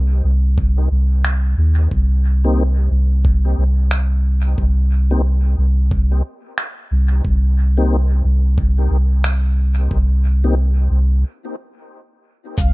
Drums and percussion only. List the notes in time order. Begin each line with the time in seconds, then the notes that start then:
0.58 kick
1.25 finger snap
1.91 kick
3.25 kick
3.91 finger snap
4.58 kick
5.91 kick
6.58 finger snap
7.25 kick
8.58 kick
9.24 finger snap
9.91 kick
12.57 kick, shaker